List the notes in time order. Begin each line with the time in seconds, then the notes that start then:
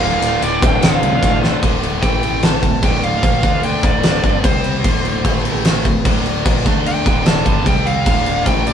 Already playing: D2 A2 D3 A3 F4
0.02 D1 F5
0.22 D1, ride
0.42 D1 D5, ride
0.61 D1 D2 A2 D3 A3 F4 G5, kick, ride
0.81 D1 F5, snare, ride
1.02 C2, ride
1.23 A1, kick, ride
1.42 D2 A2 D3 A3 F4, snare
1.61 D1 D2 A2 D3, kick, crash
1.83 crash
2.02 A1 A2 E3 A3 G5, kick, crash
2.23 crash
2.43 A5, snare, crash
2.62 D1 D2 A2, kick, crash
2.82 D1 D2 A2 D3 G5, kick, crash
3.03 F5, crash
3.22 A#1 A#2 F3 A#3, kick, crash
3.42 D2 D3 A3 D4, kick, crash
3.63 G5, crash
3.83 D1 D2 A2 D3 D5, kick, crash
4.03 snare, crash
4.23 G1 G2 D3 G3, kick, crash
4.44 C2 C3 G3 C4 C5, kick, crash
4.64 crash
4.84 D1 D2 A2 D3, kick, crash
5.05 crash
5.24 A1 A2 E3 A3, kick, crash
5.45 crash
5.65 snare, crash
5.85 D1 D2 A2, kick, crash
6.04 D1 D2 A2 D3, kick, crash
6.26 crash
6.45 A#1 A#2 F3 A#3, kick, crash
6.65 D2 D3 A3 D4, kick, crash
6.86 G5, crash
7.05 D1 D2 A2 D3, kick, crash
7.26 A5, snare, crash
7.46 G1 G2 D3 G3, kick, crash
7.66 C2 C3 G3 C4 G5, kick, crash
7.86 F5, crash
8.06 D1 D2 A2 D3, kick, crash
8.26 crash
8.46 A1 A2 E3 A3 G5, kick, crash
8.67 D5, crash